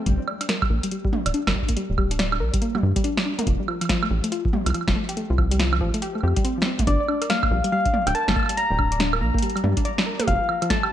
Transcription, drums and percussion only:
0.06 kick, closed hi-hat
0.10 kick
0.13 kick
0.16 kick
0.28 high woodblock
0.41 closed hi-hat, high woodblock
0.49 snare, closed hi-hat
0.62 kick, high woodblock
0.83 closed hi-hat
0.91 closed hi-hat
1.05 kick
1.13 mid tom
1.26 closed hi-hat, high woodblock
1.34 closed hi-hat
1.47 snare, high woodblock
1.55 kick
1.62 kick
1.68 kick, closed hi-hat
1.77 closed hi-hat
1.98 kick, high woodblock
2.11 closed hi-hat
2.19 snare, closed hi-hat
2.32 high woodblock
2.54 kick, closed hi-hat
2.62 closed hi-hat
2.75 mid tom, high woodblock
2.96 kick, closed hi-hat
3.04 closed hi-hat
3.17 snare
3.39 closed hi-hat, mid tom
3.47 kick, closed hi-hat
3.68 high woodblock
3.81 closed hi-hat, high woodblock
3.85 high woodblock
3.89 kick, snare, closed hi-hat, high woodblock
3.96 high woodblock
4.03 high woodblock
4.24 closed hi-hat
4.32 closed hi-hat
4.45 kick
4.53 mid tom
4.66 closed hi-hat, high woodblock
4.70 high woodblock
4.74 closed hi-hat, high woodblock
4.81 high woodblock
4.88 kick, snare
5.09 closed hi-hat
5.17 closed hi-hat
5.38 kick, high woodblock
5.51 closed hi-hat
5.60 snare, closed hi-hat
5.73 high woodblock
5.81 kick
5.94 closed hi-hat
6.02 closed hi-hat
6.15 high woodblock
6.21 high woodblock
6.28 high woodblock
6.37 kick, closed hi-hat
6.45 closed hi-hat
6.62 snare
6.79 kick, closed hi-hat, mid tom
6.87 kick, closed hi-hat
7.08 high woodblock
7.22 closed hi-hat, high woodblock
7.30 snare, closed hi-hat
7.43 kick, high woodblock
7.64 closed hi-hat
7.85 kick, closed hi-hat
7.94 mid tom
8.07 closed hi-hat, high woodblock
8.15 closed hi-hat
8.28 snare, high woodblock
8.30 high woodblock
8.32 high woodblock
8.34 kick, high woodblock
8.36 high woodblock
8.39 high woodblock
8.43 high woodblock
8.46 closed hi-hat, high woodblock
8.57 closed hi-hat
8.79 kick, high woodblock
8.92 closed hi-hat
9.00 snare, closed hi-hat
9.13 high woodblock
9.34 kick
9.38 closed hi-hat
9.42 closed hi-hat
9.50 closed hi-hat
9.56 closed hi-hat, high woodblock
9.64 mid tom
9.77 kick, closed hi-hat
9.85 closed hi-hat
9.98 snare
10.20 closed hi-hat, mid tom
10.28 kick, closed hi-hat
10.49 high woodblock
10.62 closed hi-hat, high woodblock
10.70 kick, snare, closed hi-hat
10.83 high woodblock

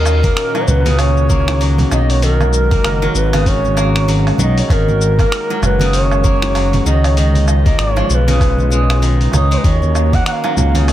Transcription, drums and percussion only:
0.06 cabasa, low woodblock
0.23 kick, open hi-hat, high conga, cabasa
0.37 finger snap, open hi-hat, cabasa
0.55 high bongo, cabasa, low woodblock
0.68 low conga, cabasa
0.86 open hi-hat, high conga, cabasa
0.99 open hi-hat, cabasa, low woodblock
1.17 cabasa
1.30 kick, high conga, cabasa
1.48 finger snap, open hi-hat, high bongo, cabasa, low woodblock
1.61 open hi-hat, cabasa
1.78 open hi-hat, high conga, low conga, cabasa
1.91 high bongo, cabasa, low woodblock
2.10 open hi-hat, cabasa
2.22 open hi-hat, cabasa
2.41 high conga, cabasa, low woodblock
2.53 cabasa
2.71 kick, open hi-hat, high conga, cabasa
2.84 finger snap, open hi-hat, cabasa, low woodblock
3.02 high bongo, cabasa
3.15 cabasa
3.33 open hi-hat, high conga, cabasa, low woodblock
3.46 kick, open hi-hat, cabasa
3.65 high conga, cabasa
3.77 high bongo, cabasa, low woodblock
3.96 finger snap, open hi-hat, cabasa
4.09 open hi-hat, cabasa
4.27 open hi-hat, cabasa, low woodblock
4.38 high conga, low conga, cabasa
4.58 open hi-hat, cabasa
4.70 kick, open hi-hat, cabasa, low woodblock
4.88 high conga, cabasa
5.01 cabasa
5.19 kick, open hi-hat, high conga, cabasa, low woodblock
5.32 finger snap, open hi-hat, cabasa
5.50 high bongo, cabasa
5.63 low conga, cabasa, low woodblock
5.80 open hi-hat, high conga, cabasa
5.93 open hi-hat, cabasa
6.11 cabasa, low woodblock
6.24 kick, high conga, cabasa
6.42 finger snap, open hi-hat, high bongo, cabasa
6.55 open hi-hat, cabasa, low woodblock
6.73 open hi-hat, high conga, low conga, cabasa
6.86 high bongo, cabasa
7.04 open hi-hat, cabasa, low woodblock
7.17 open hi-hat, cabasa
7.35 open hi-hat, high conga, cabasa
7.48 cabasa, low woodblock
7.65 kick, open hi-hat, high conga, cabasa
7.79 finger snap, open hi-hat, cabasa
7.96 high bongo, cabasa, low woodblock
8.10 cabasa
8.28 open hi-hat, high conga, cabasa
8.41 kick, open hi-hat, cabasa, low woodblock
8.59 high conga, cabasa
8.71 high bongo, cabasa
8.90 finger snap, open hi-hat, cabasa, low woodblock
9.03 open hi-hat, cabasa
9.21 open hi-hat, cabasa
9.33 high conga, low conga, cabasa, low woodblock
9.52 open hi-hat, cabasa
9.64 kick, open hi-hat, cabasa
9.82 high conga, cabasa
9.95 cabasa, low woodblock
10.13 kick, open hi-hat, high conga, cabasa
10.26 finger snap, open hi-hat, cabasa
10.44 high bongo, cabasa, low woodblock
10.57 low conga, cabasa
10.75 open hi-hat, high conga, cabasa
10.88 open hi-hat, cabasa, low woodblock

